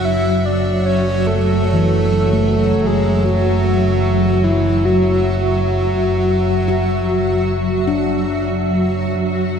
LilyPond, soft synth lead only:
\new Staff \with { instrumentName = "Soft synth lead" } { \time 4/4 \key d \lydian \tempo 4 = 75 e''8 d''8 cis''8 a'2 gis'8 | fis'4. e'8 fis'2~ | fis'2. r4 | }